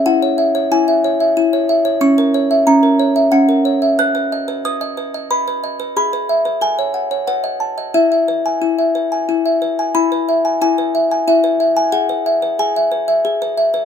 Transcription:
\new Staff \with { instrumentName = "Music box" } { \time 3/4 \key e \major \tempo 4 = 91 << { fis''4 gis''4. r8 | cis'''4 ais''4 fis''4 | fis'''4 dis'''4 b''4 | b''4 gis''4 fis''4 |
e''2~ e''8 r8 | b''4 gis''4 e''8. gis''16 | fis''4 gis''4. r8 | } \\ { e'16 cis''16 e''16 cis''16 e'16 e''16 cis''16 e''16 e'16 cis''16 e''16 cis''16 | cis'16 ais'16 cis''16 e''16 cis'16 ais'16 cis''16 e''16 cis'16 ais'16 cis''16 e''16 | b'16 b'16 dis''16 b'16 b'16 dis''16 b'16 dis''16 b'16 b'16 dis''16 b'16 | gis'16 b'16 e''16 b'16 a'16 cis''16 fis''16 cis''16 b'16 dis''16 a''16 dis''16 |
e'16 e''16 b'16 gis''16 e'16 e''16 b'16 gis''16 e'16 e''16 b'16 gis''16 | e'16 b'16 e''16 gis''16 e'16 b'16 e''16 gis''16 e'16 b'16 e''8 | gis'16 b'16 e''16 b'16 gis'16 e''16 b'16 e''16 gis'16 b'16 e''16 b'16 | } >> }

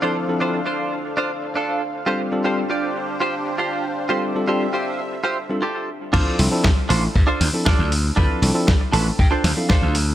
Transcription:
<<
  \new Staff \with { instrumentName = "Analog synth pad" } { \time 4/4 \key d \minor \tempo 4 = 118 << { f''1~ | f''1 | e''1 | r1 |
r1 | } \\ { <d' a' c''>1 | <d' g' c''>1~ | <d' g' c''>1 | r1 |
r1 | } >> }
  \new Staff \with { instrumentName = "Clean electric guitar" } { \time 4/4 \key d \minor << { r1 | r1 | r1 | r1 |
r4. a''8 g''8 f''8 c''4 | } \\ { <d' f' c''>16 r8 <d' f' c''>16 r16 <d' f' c''>8 r8 <d' f' c''>16 r8 <d' f' a'>8 r8 | <f' g' c''>16 r8 <f' g' c''>16 r16 <f' g' d''>8 r8 <f' g' c''>16 r8 <f' g' c''>8 r8 | <f' g' c''>16 r8 <f' g' c''>16 r16 <f' g' c''>8 r8 <f' g' c''>16 r8 <f' g' a'>8 r8 | <d' f' a' c''>8 r4 <d' f' a' c''>16 r8 <d' f' a' c''>16 r8 <d' f' a' d''>8 r8 |
<d' f' a' b'>8 r4 <d' f' a' b'>16 r8 <d' f' a' c''>16 r8 <d' f' a' c''>8 r8 | } >> }
  \new Staff \with { instrumentName = "Tine electric piano" } { \time 4/4 \key d \minor <f c' d' e' a'>8 <f c' d' e' a'>16 <f c' d' e' a'>16 r2. | <g c' d' f' a'>8 <g c' d' f' a'>16 <g c' d' f' a'>16 r2. | <g c' d' f' a'>8 <g c' d' f' a'>16 <g c' d' f' a'>16 r4. r16 <g c' d' f' a'>16 r4 | <f c' d' e' a'>8 <f c' d' e' a'>16 <f c' d' e' a'>16 r4. r16 <f c' d' e' a'>16 r4 |
<f c' d' e' a'>8 <f c' d' e' a'>16 <f c' d' e' a'>16 r4. r16 <f c' d' e' a'>16 r4 | }
  \new Staff \with { instrumentName = "Slap bass" } { \clef bass \time 4/4 \key d \minor r1 | r1 | r1 | d,16 r16 c,16 r8. a,,16 r16 g,16 r16 d,16 r8 d,8 r16 |
d,16 r16 c,16 r8. a,,16 r16 g,16 r16 d,16 r8 d,8 r16 | }
  \new DrumStaff \with { instrumentName = "Drums" } \drummode { \time 4/4 r4 r4 r4 r4 | r4 r4 r4 r4 | r4 r4 r4 r4 | <cymc bd>8 hho8 <bd sn>8 hho8 bd8 hho8 <bd sn>8 hho8 |
bd8 hho8 <bd sn>8 hho8 bd8 <hho sn>8 <bd sn>8 hho8 | }
>>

